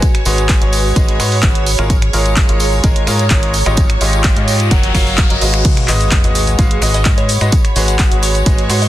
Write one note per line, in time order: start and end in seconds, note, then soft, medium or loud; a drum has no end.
0.00 1.67 F#4 medium
0.00 0.68 B4 loud
0.00 5.64 C#5 medium
0.00 0.68 G#5 medium
0.00 kick loud
0.00 closed hi-hat medium
0.00 tambourine medium
0.15 finger snap medium
0.15 closed hi-hat medium
0.25 0.59 G#1 medium
0.25 0.59 G#3 medium
0.25 0.59 F#4 medium
0.25 0.59 G#4 medium
0.25 0.59 B4 medium
0.25 0.59 C#5 loud
0.25 open hi-hat loud
0.25 tambourine medium
0.36 5.09 C#5 medium
0.36 closed hi-hat soft
0.36 tambourine medium
0.49 kick loud
0.49 snare loud
0.49 clap loud
0.49 closed hi-hat medium
0.49 tambourine soft
0.49 tambourine medium
0.62 0.94 G#1 medium
0.62 0.94 G#3 medium
0.62 0.94 F#4 medium
0.62 0.94 G#4 medium
0.62 0.94 B4 medium
0.62 0.94 C#5 medium
0.62 closed hi-hat medium
0.72 1.66 B5 medium
0.72 open hi-hat loud
0.72 tambourine medium
0.86 tambourine soft
0.96 1.17 G#1 medium
0.96 1.17 G#3 medium
0.96 1.17 F#4 medium
0.96 1.17 G#4 medium
0.96 1.17 B4 medium
0.96 1.17 D#5 medium
0.96 kick loud
0.96 closed hi-hat medium
0.96 tambourine medium
1.08 snare soft
1.08 closed hi-hat soft
1.20 1.41 G#2 medium
1.20 1.35 G#3 medium
1.20 1.35 F#4 medium
1.20 1.35 G#4 medium
1.20 1.35 B4 medium
1.20 1.35 C#5 medium
1.20 finger snap medium
1.20 open hi-hat loud
1.20 tambourine medium
1.32 open hi-hat medium
1.32 tambourine soft
1.42 1.76 G#1 loud
1.42 1.65 F#4 medium
1.42 1.65 G#4 medium
1.42 1.65 B4 medium
1.42 1.65 C#5 medium
1.42 kick loud
1.42 snare loud
1.42 clap loud
1.42 closed hi-hat medium
1.42 tambourine medium
1.42 tambourine soft
1.55 closed hi-hat medium
1.66 3.54 G#4 medium
1.66 open hi-hat loud
1.66 tambourine medium
1.79 2.11 G#1 loud
1.79 1.93 G#3 loud
1.79 1.93 F4 medium
1.79 1.93 G#4 medium
1.79 1.93 A#4 medium
1.79 1.93 C#5 loud
1.79 finger snap medium
1.79 closed hi-hat soft
1.90 kick loud
1.90 closed hi-hat medium
1.90 tambourine medium
1.90 tambourine soft
1.90 riser medium
2.02 finger snap medium
2.02 closed hi-hat medium
2.13 2.47 G#1 medium
2.13 2.46 G#3 medium
2.13 2.46 F4 medium
2.13 2.46 G#4 medium
2.13 2.46 A#4 medium
2.13 2.46 C#5 loud
2.13 4.01 A#5 medium
2.13 open hi-hat loud
2.13 tambourine medium
2.26 closed hi-hat soft
2.26 tambourine soft
2.36 kick loud
2.36 snare loud
2.36 clap loud
2.36 closed hi-hat medium
2.36 tambourine medium
2.49 2.81 G#1 medium
2.49 2.81 G#3 medium
2.49 2.81 F4 medium
2.49 2.81 G#4 medium
2.49 2.81 A#4 medium
2.49 2.81 C#5 medium
2.49 closed hi-hat medium
2.60 open hi-hat medium
2.60 tambourine medium
2.72 tambourine soft
2.84 3.05 G#1 loud
2.84 3.04 G#3 medium
2.84 3.04 F4 medium
2.84 3.04 G#4 medium
2.84 3.04 A#4 medium
2.84 3.04 D#5 medium
2.84 kick loud
2.84 closed hi-hat medium
2.84 tambourine medium
2.84 tambourine soft
2.96 closed hi-hat medium
3.07 3.28 G#2 medium
3.07 3.22 G#3 medium
3.07 3.22 F4 medium
3.07 3.22 G#4 medium
3.07 3.22 A#4 medium
3.07 3.22 C#5 loud
3.07 finger snap medium
3.07 open hi-hat loud
3.07 tambourine medium
3.19 snare soft
3.19 closed hi-hat soft
3.19 tambourine soft
3.30 3.64 G#1 loud
3.30 3.53 G#3 medium
3.30 3.53 F4 medium
3.30 3.53 G#4 medium
3.30 3.53 A#4 medium
3.30 3.53 C#5 loud
3.30 kick loud
3.30 snare loud
3.30 clap loud
3.30 closed hi-hat medium
3.30 tambourine medium
3.43 snare soft
3.43 closed hi-hat medium
3.54 4.71 F4 medium
3.54 open hi-hat loud
3.54 tambourine medium
3.66 3.99 G#1 loud
3.66 3.80 G#3 loud
3.66 3.80 F4 medium
3.66 3.80 G4 medium
3.66 3.80 C#5 medium
3.66 3.80 D#5 loud
3.66 finger snap medium
3.66 closed hi-hat soft
3.66 tambourine soft
3.77 kick loud
3.77 closed hi-hat medium
3.77 tambourine medium
3.90 finger snap medium
3.90 closed hi-hat medium
4.01 4.34 G#1 medium
4.01 4.34 G#3 medium
4.01 4.34 F4 medium
4.01 4.34 G4 medium
4.01 4.34 C#5 medium
4.01 4.34 D#5 loud
4.01 open hi-hat loud
4.01 tambourine medium
4.07 4.71 G5 medium
4.13 closed hi-hat soft
4.13 tambourine medium
4.24 kick loud
4.24 snare loud
4.24 clap loud
4.24 closed hi-hat medium
4.24 tambourine medium
4.37 4.69 G#2 medium
4.37 4.69 G#3 medium
4.37 4.69 F4 medium
4.37 4.69 G4 medium
4.37 4.69 C#5 medium
4.37 4.69 D#5 medium
4.37 closed hi-hat medium
4.48 open hi-hat loud
4.48 tambourine medium
4.60 closed hi-hat soft
4.60 tambourine medium
4.71 4.92 F#1 medium
4.71 4.92 F#3 medium
4.71 6.40 F#4 medium
4.71 4.92 F#4 medium
4.71 4.92 A#4 medium
4.71 4.92 C#5 medium
4.71 4.92 F#5 medium
4.71 kick loud
4.71 closed hi-hat medium
4.71 tambourine soft
4.71 tambourine medium
4.83 5.65 F5 medium
4.83 snare soft
4.83 closed hi-hat medium
4.95 5.28 F#1 medium
4.95 5.27 F#3 medium
4.95 5.27 F#4 medium
4.95 5.27 A#4 medium
4.95 5.27 C#5 medium
4.95 5.27 F5 loud
4.95 finger snap medium
4.95 kick medium
4.95 open hi-hat loud
4.95 tambourine medium
5.07 open hi-hat medium
5.07 tambourine soft
5.13 5.65 A#5 medium
5.18 kick loud
5.18 snare loud
5.18 clap loud
5.18 closed hi-hat medium
5.18 tambourine medium
5.30 5.39 F#1 medium
5.30 5.40 F#3 medium
5.30 5.40 F#4 medium
5.30 5.40 A#4 medium
5.30 5.40 C#5 medium
5.30 5.40 D#5 medium
5.30 closed hi-hat medium
5.41 5.63 G#1 medium
5.41 5.86 G#3 medium
5.41 5.86 F#4 medium
5.41 5.86 G#4 medium
5.41 5.86 B4 medium
5.41 5.86 D#5 loud
5.41 open hi-hat loud
5.41 tambourine medium
5.53 finger snap medium
5.53 closed hi-hat soft
5.53 tambourine soft
5.65 8.16 G#4 loud
5.65 8.88 C#5 medium
5.65 kick loud
5.65 closed hi-hat medium
5.65 crash loud
5.65 tambourine medium
5.65 sub drop medium
5.65 cabasa soft
5.77 finger snap medium
5.77 closed hi-hat medium
5.88 6.22 G#1 medium
5.88 6.21 G#3 medium
5.88 6.21 F#4 medium
5.88 6.21 G#4 medium
5.88 6.21 B4 medium
5.88 6.21 D#5 loud
5.88 clap medium
5.88 open hi-hat loud
5.88 tambourine medium
5.88 tambourine loud
5.88 cabasa medium
6.00 closed hi-hat soft
6.00 tambourine medium
6.00 cabasa soft
6.11 kick loud
6.11 snare loud
6.11 clap loud
6.11 closed hi-hat medium
6.11 tambourine medium
6.11 cabasa soft
6.18 8.18 F#5 medium
6.24 6.56 G#1 medium
6.24 6.56 G#3 medium
6.24 6.56 F#4 medium
6.24 6.56 G#4 medium
6.24 6.56 B4 medium
6.24 6.56 D#5 medium
6.24 closed hi-hat medium
6.24 cabasa soft
6.35 snare soft
6.35 open hi-hat loud
6.35 tambourine medium
6.35 cabasa medium
6.41 8.88 B5 medium
6.47 closed hi-hat soft
6.47 tambourine soft
6.47 cabasa soft
6.59 6.80 G#3 medium
6.59 6.79 F#4 medium
6.59 6.80 G#4 medium
6.59 6.80 B4 medium
6.59 6.80 F5 medium
6.59 kick loud
6.59 closed hi-hat medium
6.59 tambourine medium
6.59 tambourine soft
6.59 cabasa soft
6.71 closed hi-hat medium
6.82 7.03 G#1 medium
6.82 6.97 G#3 medium
6.82 6.97 F#4 medium
6.82 6.97 G#4 medium
6.82 6.97 B4 medium
6.82 6.97 D#5 medium
6.82 finger snap medium
6.82 open hi-hat loud
6.82 tambourine medium
6.82 cabasa medium
6.94 7.07 D#5 medium
6.94 snare soft
6.94 closed hi-hat soft
6.94 tambourine medium
6.94 cabasa soft
7.05 7.39 G#2 loud
7.05 7.29 G#3 medium
7.05 7.29 F#4 medium
7.05 7.29 G#4 medium
7.05 7.29 B4 medium
7.05 7.29 D#5 loud
7.05 kick loud
7.05 snare loud
7.05 clap loud
7.05 closed hi-hat medium
7.05 tambourine medium
7.05 tambourine soft
7.05 cabasa soft
7.18 7.25 C#5 medium
7.18 snare soft
7.18 closed hi-hat medium
7.29 7.37 C#5 medium
7.29 open hi-hat loud
7.29 tambourine medium
7.29 cabasa medium
7.41 7.49 G#2 medium
7.41 7.51 G#3 loud
7.41 7.51 F#4 medium
7.41 7.51 G#4 medium
7.41 7.51 B4 medium
7.41 7.51 D#5 loud
7.41 finger snap medium
7.41 closed hi-hat soft
7.41 tambourine medium
7.41 cabasa soft
7.52 8.88 F#4 loud
7.52 kick loud
7.52 closed hi-hat medium
7.52 tambourine loud
7.52 tambourine soft
7.52 cabasa soft
7.65 finger snap medium
7.65 closed hi-hat medium
7.76 8.09 G#1 medium
7.76 8.09 G#3 medium
7.76 8.09 F#4 medium
7.76 8.09 G#4 medium
7.76 8.09 B4 medium
7.76 8.09 C#5 loud
7.76 open hi-hat loud
7.76 tambourine medium
7.76 cabasa medium
7.88 8.88 C#5 medium
7.88 7.95 F#5 medium
7.88 closed hi-hat soft
7.88 tambourine medium
7.88 cabasa soft
7.99 8.07 F#5 medium
7.99 kick loud
7.99 snare loud
7.99 clap loud
7.99 closed hi-hat medium
7.99 tambourine loud
7.99 cabasa soft
8.11 8.44 G#1 medium
8.11 8.44 G#3 medium
8.11 8.44 F#4 medium
8.11 8.44 G#4 medium
8.11 8.44 B4 medium
8.11 8.44 C#5 medium
8.11 closed hi-hat medium
8.11 cabasa soft
8.23 8.36 C#5 medium
8.23 open hi-hat loud
8.23 tambourine loud
8.23 tambourine medium
8.23 cabasa medium
8.35 closed hi-hat soft
8.35 tambourine medium
8.35 cabasa soft
8.46 8.67 G#3 medium
8.46 8.67 F#4 medium
8.46 8.67 G#4 medium
8.46 8.67 B4 medium
8.46 8.67 D#5 loud
8.46 kick loud
8.46 closed hi-hat medium
8.46 tambourine medium
8.46 cabasa soft
8.58 snare soft
8.58 closed hi-hat medium
8.70 8.88 G#2 loud
8.70 8.85 G#3 medium
8.70 8.85 F#4 medium
8.70 8.85 G#4 medium
8.70 8.85 B4 medium
8.70 8.85 C#5 loud
8.70 finger snap medium
8.70 open hi-hat loud
8.70 tambourine medium
8.70 cabasa medium
8.82 8.88 D#5 medium
8.82 open hi-hat medium
8.82 tambourine medium
8.82 cabasa soft